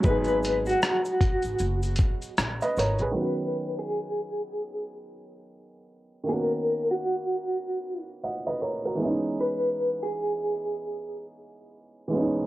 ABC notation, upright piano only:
X:1
M:4/4
L:1/16
Q:"Swing 16ths" 1/4=77
K:B
V:1 name="Upright piano"
z12 z [Bd] [Ac] [GB]- | [GB] z12 z3 | z8 z2 [df] [Bd] [Ac] [FA]2 z | z16 |]
V:2 name="Upright piano"
[F,G,B,DG]16 | [D,F,B,CF]16 | [D,A,B,CF]12- [D,A,B,CF]2 [E,G,B,CD]2- | [E,G,B,CD]12- [E,G,B,CD]2 [E,G,B,CD]2 |]